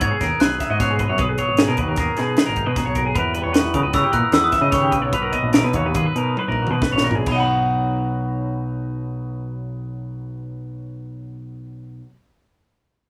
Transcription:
Already playing: clean electric guitar B2 F#3 D#4 F#4
0.01 picked electric bass G#2, clean electric guitar G#4 C#5, glockenspiel G#6, kick, closed hi-hat
0.11 clean electric guitar G#4
0.21 picked electric bass D#2, clean electric guitar D#4 A#4, kick, snare, closed hi-hat
0.40 picked electric bass B1, clean electric guitar G#4 B4, glockenspiel F#6, snare, closed hi-hat
0.60 clean electric guitar D#4 E5, kick, snare, closed hi-hat
0.70 picked electric bass G#2, clean electric guitar F#4 D#5
0.80 clean electric guitar B2 G#4 C#5, glockenspiel F#6, kick, snare, closed hi-hat
0.91 clean electric guitar G#4
0.99 clean electric guitar F#3 B4, kick, closed hi-hat
1.09 picked electric bass F#2, clean electric guitar C#5
1.18 picked electric bass B1, clean electric guitar B2 G#4 B4, glockenspiel D#6, kick, closed hi-hat
1.29 clean electric guitar G#4
1.38 clean electric guitar F#3 C#5, kick, closed hi-hat
1.48 picked electric bass G#1
1.57 clean electric guitar D#4 G#4, snare, closed hi-hat
1.68 picked electric bass B2, clean electric guitar A#4
1.77 picked electric bass D#2, clean electric guitar F#4 B4, kick, closed hi-hat
1.88 picked electric bass D#2, clean electric guitar A#4
1.96 picked electric bass D#2, clean electric guitar G#4 A#4, kick, snare, closed hi-hat
2.17 picked electric bass B2, clean electric guitar D#4 G#4, snare, closed hi-hat
2.37 clean electric guitar G#4 B4, snare, closed hi-hat
2.46 picked electric bass G#1, clean electric guitar A#4
2.56 clean electric guitar D#4, kick, closed hi-hat
2.66 picked electric bass B2, clean electric guitar F#4 B4
2.76 clean electric guitar B2 G#4, glockenspiel A#5, kick, snare, closed hi-hat
2.86 picked electric bass B1, clean electric guitar C#5
2.95 clean electric guitar F#3 A#4, kick, closed hi-hat
3.06 clean electric guitar G#4
3.15 picked electric bass E2, clean electric guitar E3 A#4, glockenspiel B5, kick, closed hi-hat
3.19 clean electric guitar B4
3.34 clean electric guitar G3 B4, closed hi-hat
3.44 picked electric bass E2, clean electric guitar C#5
3.53 clean electric guitar B4, glockenspiel C#6, snare, closed hi-hat
3.59 clean electric guitar B3
3.64 picked electric bass E2
3.74 picked electric bass C#3, clean electric guitar F#4 A#4, glockenspiel D#6, kick, closed hi-hat
3.83 picked electric bass C#2, clean electric guitar B4
3.93 picked electric bass C#3, clean electric guitar B4 C#5, glockenspiel E6, kick, snare, closed hi-hat
4.03 clean electric guitar G4
4.12 picked electric bass A#2, clean electric guitar B3 A#4, glockenspiel F#6, kick, closed hi-hat
4.32 picked electric bass E2, clean electric guitar B4, glockenspiel E6, snare, closed hi-hat
4.44 glockenspiel D#6
4.52 clean electric guitar F#4 E5, kick, snare, closed hi-hat
4.61 picked electric bass C#3, clean electric guitar D#5
4.72 clean electric guitar D#3 C#5, glockenspiel C#6, kick, snare, closed hi-hat
4.82 clean electric guitar G4
4.91 clean electric guitar C#3 B4, kick, closed hi-hat
5.01 picked electric bass B1, clean electric guitar C#5
5.12 picked electric bass B1, clean electric guitar B2 B4, glockenspiel B5, kick, closed hi-hat
5.22 clean electric guitar A#4
5.32 clean electric guitar F#3 D#5, kick, closed hi-hat
5.42 picked electric bass A#1
5.53 clean electric guitar D#4 A#4, snare, closed hi-hat
5.64 picked electric bass B2, clean electric guitar B4
5.73 picked electric bass D#2, clean electric guitar F#4 C#5, kick, closed hi-hat
5.85 picked electric bass D#2, clean electric guitar B4
5.94 picked electric bass D#2, clean electric guitar G#4 B4, kick, closed hi-hat
6.06 clean electric guitar B4
6.16 picked electric bass B2, clean electric guitar D#4 A#4, closed hi-hat
6.37 clean electric guitar B4, high tom
6.48 picked electric bass A#1, clean electric guitar A#4
6.52 kick
6.62 clean electric guitar F#4
6.67 picked electric bass B2, clean electric guitar B4, mid tom
6.82 clean electric guitar B2 B4, kick, snare
6.92 picked electric bass A#1, clean electric guitar C#5
6.98 snare
7.04 clean electric guitar F#3 A#4
7.11 floor tom
7.15 clean electric guitar G#4
7.26 picked electric bass B1, clean electric guitar B2, glockenspiel B5, kick, crash
7.32 clean electric guitar F#3 D#5
7.36 clean electric guitar D#4 F#5
7.40 clean electric guitar F#4 B5

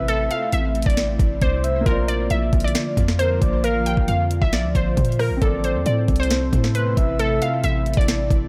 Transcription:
Already playing: 808-style bass A1, ambient pad C3 A3 E4, grand piano C4 A4
0.08 ambient pad C4, synth pluck A4, soft synth lead E5, closed hi-hat
0.31 synth pluck F5, closed hi-hat
0.52 808-style bass A1, synth pluck E5, closed hi-hat
0.75 closed hi-hat
0.82 808-style bass A1, synth pluck D5, kick, closed hi-hat
0.90 closed hi-hat
0.97 snare, closed hi-hat
1.19 808-style bass A1, kick, closed hi-hat
1.42 808-style bass C2, synth pluck C5, soft synth lead D5, kick, closed hi-hat
1.64 soft synth lead E5, closed hi-hat
1.81 grand piano A#3
1.86 808-style bass A#1, ambient pad D3 F3 A#3 F4, grand piano F4, synth pluck A#4, soft synth lead C5, kick, closed hi-hat
1.91 grand piano D5
2.08 synth pluck D5, closed hi-hat
2.30 808-style bass A#1, synth pluck E5, closed hi-hat
2.53 808-style bass A#1, kick, closed hi-hat
2.60 closed hi-hat
2.64 synth pluck D5, closed hi-hat
2.75 snare, closed hi-hat
2.97 808-style bass F2, kick, closed hi-hat
3.08 snare
3.19 soft synth lead A#4, synth pluck C5, closed hi-hat
3.42 808-style bass A#1, soft synth lead D5, kick, closed hi-hat
3.64 808-style bass A1, synth pluck A#4, soft synth lead F5, closed hi-hat
3.81 808-style bass A#1
3.86 synth pluck G5, closed hi-hat
3.97 808-style bass A#1, kick
4.08 808-style bass F2, synth pluck F5, closed hi-hat
4.31 closed hi-hat
4.42 808-style bass A#1, synth pluck E5, kick
4.53 synth pluck D5, snare, closed hi-hat
4.64 808-style bass D2
4.75 808-style bass A#1, synth pluck C5, kick, closed hi-hat
4.97 808-style bass A#2, kick, closed hi-hat
5.05 closed hi-hat
5.12 closed hi-hat
5.19 synth pluck A#4, cross-stick, open hi-hat
5.31 808-style bass A1
5.36 grand piano C4
5.42 808-style bass A1, ambient pad C3 A3 C4 E4, grand piano A4, synth pluck A4, soft synth lead D5, kick, closed hi-hat
5.64 synth pluck C5, closed hi-hat
5.75 808-style bass E2
5.86 808-style bass A2, synth pluck D5, closed hi-hat
6.08 808-style bass C2, kick, closed hi-hat
6.16 synth pluck C5, closed hi-hat
6.23 closed hi-hat
6.30 snare, closed hi-hat
6.53 808-style bass A2, kick, closed hi-hat
6.64 snare
6.75 synth pluck B4, soft synth lead C5, closed hi-hat
6.97 808-style bass A1, soft synth lead E5, kick, closed hi-hat
7.19 synth pluck A4, soft synth lead E5, closed hi-hat
7.42 synth pluck F5, closed hi-hat
7.64 808-style bass A1, synth pluck E5, closed hi-hat
7.86 closed hi-hat
7.94 808-style bass A1, synth pluck D5, kick, closed hi-hat
8.01 closed hi-hat
8.08 snare, closed hi-hat
8.30 808-style bass A1, kick, closed hi-hat

